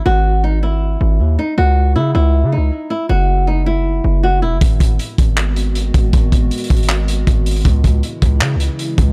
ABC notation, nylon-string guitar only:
X:1
M:4/4
L:1/8
Q:1/4=158
K:G#m
V:1 name="Nylon-string guitar"
F2 D E4 D | F2 E E2 D2 E | F2 D E3 F E | z8 |
z8 | z8 |]